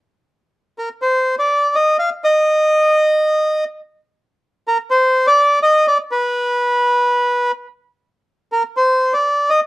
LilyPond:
\new Staff \with { instrumentName = "Bandoneon" } { \time 4/4 \key ees \major \tempo 4 = 124 r4. bes'8 c''8. d''8. ees''8 | f''8 ees''2. r8 | r4. bes'8 c''8. d''8. ees''8 | d''8 b'2. r8 |
r4. bes'8 c''8. d''8. ees''8 | }